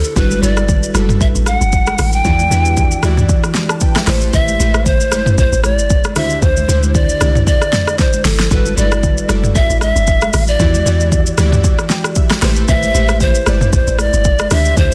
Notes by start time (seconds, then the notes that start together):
Already playing: D3 D4 E4 G4 A4
0.04 shaker
0.16 G1 G3 D4 E4 F#4 A4 B4, kick, low conga, shaker
0.31 high conga, shaker
0.42 G1 G3 D4 E4 F#4 A4 B4 D5, high conga, shaker
0.57 cross-stick, high conga, shaker
0.68 kick, low conga, shaker
0.83 shaker
0.94 F#1 G3 D4 E4 F#4 A4 B4, cross-stick, high conga, shaker
1.09 mid tom, shaker
1.21 A1 E5, kick, shaker
1.35 A1, shaker
1.46 F#5, cross-stick, high conga, shaker
1.61 G1, shaker
1.72 kick, shaker
1.87 cross-stick, high conga, shaker
1.99 A1, cross-stick, open hi-hat, high conga, low conga, shaker
2.13 G5, shaker
2.24 E2 E3 E4 F#4 G4 D5, kick, low conga, shaker
2.39 high conga, shaker
2.51 E2 E3 D4 E4 G4 B4, high conga, shaker
2.65 high conga, shaker
2.76 kick, low conga, shaker
2.91 shaker
3.03 D2 E3 E4 F#4 G4 D5, cross-stick, high conga, shaker
3.17 mid tom, shaker
3.29 kick, shaker
3.44 cross-stick, shaker
3.55 snare, high conga, shaker
3.69 A5, cross-stick, shaker
3.81 B4 G5, kick, shaker
3.95 G4 E5, cross-stick, snare, high conga, shaker
4.07 A1 A3 E4 G4 B4 C5, cross-stick, snare, open hi-hat, high conga, low conga, shaker
4.21 shaker
4.33 A1 E5, kick, low conga, shaker
4.48 high conga, shaker
4.59 A1 A3 E4 G4 B4 C5, high conga, shaker
4.74 cross-stick, high conga, shaker
4.86 C5, kick, low conga, shaker
5.00 shaker
5.11 G1 A3 E4 G4 B4 C5, cross-stick, high conga, shaker
5.26 mid tom, shaker
5.38 A1 C5, kick, shaker
5.52 A1, shaker
5.64 D5, cross-stick, high conga, shaker
5.79 G1, shaker
5.90 kick, shaker
6.04 cross-stick, high conga, shaker
6.16 D2 D3 D4 E4 F#4 C5 E5, cross-stick, open hi-hat, high conga, low conga, shaker
6.24 G4
6.30 shaker
6.42 D2 C5, kick, low conga, shaker
6.57 high conga, shaker
6.68 D2 D3 D4 E4 G4 C5, high conga, shaker
6.83 high conga, shaker
6.94 D5, kick, low conga, shaker
7.09 shaker
7.20 C2 D3 D4 E4 G4 D5, cross-stick, high conga, low conga, shaker
7.35 mid tom, shaker
7.47 D5, kick, shaker
7.62 cross-stick, shaker
7.73 snare, mid tom, high conga, shaker
7.87 cross-stick, shaker
7.99 C5, kick, snare, shaker
8.13 high conga, shaker
8.25 G1 A4, snare, open hi-hat, high conga, low conga, shaker
8.39 snare, shaker
8.51 G1 G3 D4 E4 F#4 A4 B4, kick, low conga, shaker
8.66 high conga, shaker
8.76 G1 G3 D4 E4 F#4 A4 B4 D5, high conga, shaker
8.92 cross-stick, high conga, shaker
9.03 kick, low conga, shaker
9.18 shaker
9.28 F#1 G3 D4 E4 F#4 A4 D5, cross-stick, high conga, shaker
9.44 mid tom, shaker
9.55 A1 E5, kick, shaker
9.70 A1, shaker
9.81 E5, cross-stick, high conga, shaker
9.96 G1, shaker
10.07 kick, shaker
10.22 cross-stick, high conga, shaker
10.33 A1, cross-stick, open hi-hat, high conga, low conga, shaker
10.47 D5, shaker
10.59 E2 E3 E4 F#4 G4 D5, kick, low conga, shaker
10.74 high conga, shaker
10.85 E2 E3 E4 F#4 G4 D5, high conga, shaker
11.00 high conga, shaker
11.12 kick, low conga, shaker
11.26 shaker
11.37 D2 E3 E4 F#4 G4 D5, cross-stick, high conga, shaker
11.52 mid tom, shaker
11.64 kick, shaker
11.79 cross-stick, shaker
11.90 G5, snare, high conga, shaker
12.04 cross-stick, shaker
12.16 E5, kick, shaker
12.30 cross-stick, snare, high conga, shaker
12.42 A1 A3 E4 G4 B4 C5, cross-stick, snare, open hi-hat, high conga, low conga, shaker
12.56 shaker
12.68 A1 E5, kick, low conga, shaker
12.83 high conga, shaker
12.94 A1 A3 E4 G4 B4 C5, high conga, shaker
13.09 cross-stick, high conga, shaker
13.20 C5, kick, low conga, shaker
13.35 shaker
13.46 G1 A3 E4 G4 B4 D5, cross-stick, high conga, shaker
13.61 mid tom, shaker
13.73 A1 C5, kick, shaker
13.87 A1, shaker
13.99 D5, cross-stick, high conga, shaker
14.13 G1, shaker
14.24 kick, shaker
14.39 cross-stick, high conga, shaker
14.50 D2 D3 D4 E4 G4 C5 E5, cross-stick, open hi-hat, high conga, low conga, shaker
14.65 shaker
14.77 D2 C5, kick, low conga, shaker